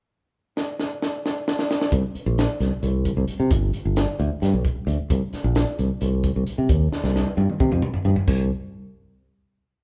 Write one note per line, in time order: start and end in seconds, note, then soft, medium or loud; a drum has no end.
0.57 snare medium
0.79 snare medium
1.02 snare medium
1.26 snare medium
1.48 snare medium
1.59 snare medium
1.71 snare medium
1.81 snare medium
1.92 2.02 C2 medium
1.92 kick loud
1.92 closed hi-hat medium
2.15 muted fingered electric bass stroke soft
2.15 closed hi-hat medium
2.26 2.45 A#1 medium
2.38 snare medium
2.38 closed hi-hat medium
2.60 2.70 C2 medium
2.60 snare soft
2.60 closed hi-hat medium
2.83 3.12 C2 medium
2.83 closed hi-hat medium
3.05 kick medium
3.05 closed hi-hat medium
3.17 3.27 C2 medium
3.27 muted fingered electric bass stroke soft
3.27 closed hi-hat medium
3.40 3.49 C3 medium
3.51 3.70 G1 medium
3.51 kick loud
3.51 closed hi-hat medium
3.73 muted fingered electric bass stroke soft
3.73 closed hi-hat medium
3.85 4.05 G1 medium
3.96 snare medium
3.96 closed hi-hat medium
4.19 4.29 D2 medium
4.19 closed hi-hat soft
4.42 4.52 G2 medium
4.42 snare soft
4.42 closed hi-hat medium
4.53 4.63 B1 medium
4.65 kick medium
4.65 closed hi-hat medium
4.76 muted fingered electric bass stroke soft
4.87 4.97 D2 medium
4.87 closed hi-hat medium
5.10 5.20 C2 medium
5.10 kick medium
5.10 closed hi-hat medium
5.33 muted fingered electric bass stroke soft
5.33 snare soft
5.33 closed hi-hat soft
5.44 5.64 A#1 medium
5.55 snare medium
5.55 closed hi-hat medium
5.79 5.88 C2 medium
5.79 closed hi-hat medium
6.01 6.30 C2 medium
6.01 closed hi-hat medium
6.23 kick medium
6.23 closed hi-hat medium
6.36 6.45 C2 medium
6.47 muted fingered electric bass stroke soft
6.47 closed hi-hat medium
6.58 6.68 C3 medium
6.69 6.89 D#2 medium
6.69 kick loud
6.69 closed hi-hat medium
6.92 muted fingered electric bass stroke soft
6.92 snare medium
7.04 7.23 C2 medium
7.04 snare soft
7.16 snare medium
7.26 high tom medium
7.37 7.47 G2 medium
7.37 high tom medium
7.50 mid tom medium
7.60 7.70 C3 medium
7.60 kick medium
7.60 mid tom medium
7.72 7.81 F2 medium
7.72 mid tom medium
7.82 mid tom medium
7.94 muted fingered electric bass stroke soft
7.94 floor tom medium
8.05 8.15 G2 medium
8.05 floor tom medium
8.16 muted fingered electric bass stroke soft
8.16 floor tom medium
8.28 8.49 C2 medium
8.28 kick loud
8.28 crash medium